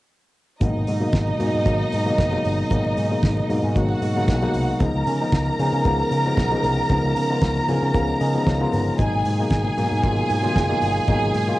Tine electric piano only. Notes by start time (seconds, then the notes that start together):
0.60 B2 F#3 G#3 A#3 D#4
1.00 B2 F#3 G#3 A#3 D#4
1.39 B2 F#3 G#3 A#3 F#4
1.65 B2 F#3 G#3 A#3 D#4
2.05 B2 F#3 G#3 A#3 D#4
2.31 B2 F#3 G#3 A#3 D#4
2.70 B2 F#3 G#3 A#3 D#4
3.11 B2 F#3 G#3 A#3 D#4
3.49 B2 F#3 G#3 A#3 D#4
3.75 B2 F#3 G#3 A#3 D#4
4.16 B2 F#3 G#3 A#3 D#4
4.42 B2 F#3 G#3 A#3 D#4
4.80 C#3 F3 G#3 B3 D#4
5.21 C#3 F3 G#3 B3 D#4
5.59 C#3 F3 G#3 B3 D#4
5.85 C#3 F3 G#3 B3 D#4
6.25 C#3 F3 G#3 B3 D#4
6.51 C#3 F3 G#3 B3 D#4
6.89 C#3 F3 G#3 B3 D#4
7.29 C#3 F3 G#3 B3 F4
7.68 C#3 F3 G#3 B3 D#4 G#5
7.94 C#3 F3 G#3 B3 C#4 F5
8.21 D#5
8.34 C#3 F3 G#3 B3 D#4
8.47 C#5
8.60 C#3 F3 G#3 B3 F4
8.73 B4
8.98 B2 F#3 G#3 A#3 D#4
9.39 B2 F#3 G#3 A#3 D#4
9.77 B2 F#3 G#3 A#3 D#4
10.02 B2 F#3 G#3 A#3 F4
10.43 B2 F#3 G#3 A#3 F4
10.69 B2 F#3 G#3 A#3 D#4
11.07 B2 F#3 G#3 A#3 D#4
11.47 B2 F#3 G#3 A#3 F4